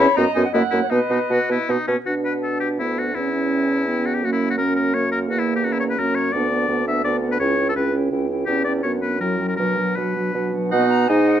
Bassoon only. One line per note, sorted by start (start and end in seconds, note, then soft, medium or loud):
0.18 0.26 F#2 medium
0.36 0.44 F#2 medium
0.54 0.62 F#2 medium
0.72 0.81 F#2 medium
0.91 1.00 B2 medium
1.10 1.19 B2 medium
1.30 1.39 B2 medium
1.49 1.58 B2 medium
1.69 1.77 B2 medium
1.88 1.96 B2 medium
2.06 2.81 B2 soft
2.79 3.15 D2 soft
3.15 4.24 E2 soft
4.23 5.30 F#2 soft
5.29 5.98 E2 medium
5.99 6.33 F#2 soft
6.34 6.65 D2 medium
6.69 7.00 D2 medium
7.04 7.36 D2 medium
7.39 7.72 C#2 medium
7.76 8.07 C#2 medium
8.11 8.43 C#2 medium
8.47 8.80 E2 medium
8.84 9.17 F#2 soft
9.21 9.54 F#2 soft
9.59 9.93 B2 soft
9.97 10.30 B2 soft
10.34 10.68 B2 medium
10.72 11.07 B2 medium
11.09 11.40 G#2 medium